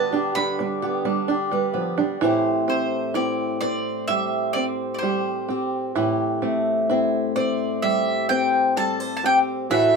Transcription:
Already playing: D3 G3 B3 D4 G4 B4 A5
0.13 D4 G4
0.35 D3 G3 B5
0.59 G3 D4
0.82 B3 G4
1.05 G3 D4
1.28 D4 G4
1.51 G3 B4
1.74 F3 B3
1.98 G3 D4
2.21 A2 E3 A3 C4 E4 G4 C5
2.68 A3 C4 C5
3.14 C4 E4 D5
3.61 C4 C5 D5
4.08 G3 G4 E5
4.53 C4 D5
4.94 D5
4.99 G3 C5
5.03 G4
5.49 C4 G4
5.95 A2 E3 E4 G4
6.42 A3 C4
6.90 C4 E4
7.36 C4 C5 D5
7.82 G3 G4 E5
8.29 C4 G5
8.77 G3 A4 A5
9.00 C5
9.17 A5
9.24 C4 G4 G5
9.70 A2 E3 A3 E4 F#4 A4 E5

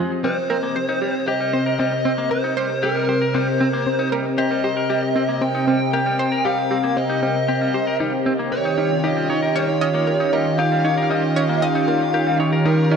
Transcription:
Already playing: F3 C4 G4 G#4 D#5
0.00 G#3
0.24 C3 G3 C4 C5
0.50 C4 A#4
0.63 A#3
0.76 A#4 C5
0.89 D#4
1.02 G3 G4
1.28 G4 D#5
1.40 G3
1.53 C4 C5
1.66 A#4
1.79 G3 C4 D#5
2.05 C4
2.18 A#3
2.31 A#4 C5
2.44 D#4
2.57 G3 C5
2.83 G4 A#4
2.96 G3
3.09 G4 C5
3.22 A#4
3.34 G3 C4 C5
3.60 C4
3.73 A#3
3.86 C4
3.99 D#4
4.12 G3 A#4
4.38 G4 C5 D#5
4.51 G3
4.64 G4 C5
4.77 A#4
4.90 G3 G4
5.16 C4
5.29 A#3
5.39 C4 A#4 G5
5.55 D#4
5.67 G3 C4
5.93 G4 A#4 G5
6.06 G3
6.19 C5
6.32 A#4
6.45 G3 G4 F5
6.71 C4 G4
6.84 A#3
6.97 C4 D#5
7.10 D#4
7.23 G3 C4
7.48 C4 G4
7.61 G3
7.74 G4 C5
7.87 A#4
8.00 G3 D#4
8.26 C4
8.39 A#3
8.52 D#3 A#4 C#5
8.61 F4
8.65 C#4 D#4
8.78 G3 D#4
9.04 D#4 G4 D#5
9.17 G3
9.30 D#4 C#5
9.43 A#4
9.55 G3 C#5
9.81 C#4 D#5
9.94 A#3
10.07 A#4
10.20 D#4
10.33 G3 A#4 D#5
10.59 D#4 G4 F5
10.72 G3
10.85 D#4 C#5
10.98 A#4
11.03 F5
11.10 G3 D#4 D#5
11.36 C#4 C#5
11.49 A#3
11.62 D#5 F5
11.75 D#4
11.88 G3 A#4
12.14 G4 A#4
12.27 G3
12.40 D#4 C#5
12.53 A#4
12.65 G3 D#4 A#4
12.91 C#4 D#4

